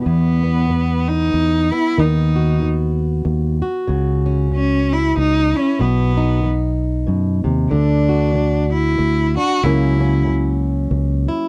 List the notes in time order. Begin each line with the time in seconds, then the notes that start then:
Already playing: G3 B3
0.05 E2 B3
0.44 B3
0.69 muted steel-string acoustic guitar stroke
1.08 D#4
1.34 E2, muted steel-string acoustic guitar stroke
1.72 B3 E4
1.98 D#2 D#3 D#4
2.36 F#4
2.63 muted steel-string acoustic guitar stroke
3.25 D#2, muted steel-string acoustic guitar stroke
3.62 F#4
3.87 C#2 C#3
4.26 C#4
4.52 C#4, muted steel-string acoustic guitar stroke
4.93 E4
5.16 C#2 D#4, muted steel-string acoustic guitar stroke
5.54 C#4 E4
5.79 B1 B2 B3
6.17 D#4
6.44 muted steel-string acoustic guitar stroke
7.07 F#2 B2
7.44 D#2 C3
7.71 D2 D3 D4
8.09 F#4
8.35 muted steel-string acoustic guitar stroke
8.73 E4
8.98 D2, muted steel-string acoustic guitar stroke
9.37 D4 F#4
9.63 C#2 C#3 F#3 A#3 C#4 E4
10.01 C#4
10.27 muted steel-string acoustic guitar stroke
10.91 C#2, muted steel-string acoustic guitar stroke
11.28 E4